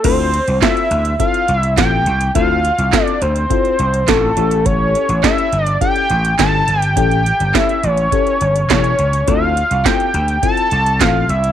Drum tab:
CC |x---------------|----------------|----------------|----------------|
HH |x-xxxxxxxxxxx-xx|x-xxxxxxxxxxx-xx|x-xxxxxxxxxxx-xx|xxxxxxxxxxxxxxxx|
CP |----x-------x---|----x-------x---|----x-------x---|----x-------x---|
SD |----o-------o---|----o-------o---|----o-------o---|----o-------o---|
BD |o---o---o---o---|o---o---o---o---|o---o---o---o---|o---o---o---o---|

CC |----------------|
HH |x-xxxxxxxxxxx-xx|
CP |----x-------x---|
SD |----o-------o---|
BD |o---o---o---o---|